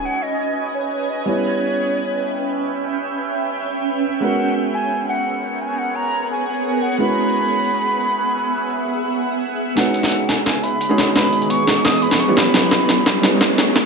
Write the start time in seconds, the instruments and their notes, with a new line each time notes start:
Already playing: felt piano G#3 C#4 D#4 F#4 B4, ambient pad C#4 B4 D#5 G#5
0.05 flute F#5
0.23 flute D#5
0.75 flute C#5
0.92 flute C#5
1.09 flute D#5
1.25 felt piano G3 B3 C#4 E4 B4, ambient pad C#4 E5 G5, flute C#5
4.20 felt piano G#3 B3 C#4 F#4 A#4, ambient pad B3 G#4 A#4 C#5 F#5, flute F#5
4.74 flute G#5
5.09 flute F#5
5.61 flute G#5
5.78 flute F#5
5.96 flute A#5
6.30 flute G#5
6.48 flute G#5
6.83 flute F#5
6.98 felt piano G#3 C#4 E4 F#4 B4, ambient pad E5, flute B5
9.75 felt piano G#3 C#4 D#4 F#4 B4, ambient pad B3 G#4 C#5 D#5, flute F#5, snare, closed hi-hat, riser
9.94 closed hi-hat
10.03 snare, closed hi-hat
10.12 closed hi-hat
10.29 flute G#5, snare, closed hi-hat
10.46 flute G#5, snare, closed hi-hat
10.63 flute B5, closed hi-hat
10.81 closed hi-hat
10.89 felt piano G#3 C#4 D#4 F#4 G#4
10.98 snare, closed hi-hat
11.14 felt piano G#3 C#4 D#4 F#4 B4, flute B5, snare, closed hi-hat
11.33 closed hi-hat
11.42 closed hi-hat
11.50 flute C#6, closed hi-hat
11.67 snare, closed hi-hat
11.85 flute D#6, snare, closed hi-hat
12.02 flute B5, closed hi-hat
12.11 snare
12.20 flute C#6, closed hi-hat
12.28 felt piano G3 B3 C#4 E4 G4
12.37 ambient pad G4 E5, flute B5, snare, closed hi-hat
12.46 closed hi-hat
12.52 felt piano G3 B3 C#4 E4 B4, snare, closed hi-hat
12.71 snare, closed hi-hat
12.81 closed hi-hat
12.89 snare, closed hi-hat
13.06 snare, closed hi-hat
13.22 felt piano G3 B3 C#4 E4 B4, snare, closed hi-hat
13.41 snare, closed hi-hat
13.58 snare, closed hi-hat
13.76 snare, closed hi-hat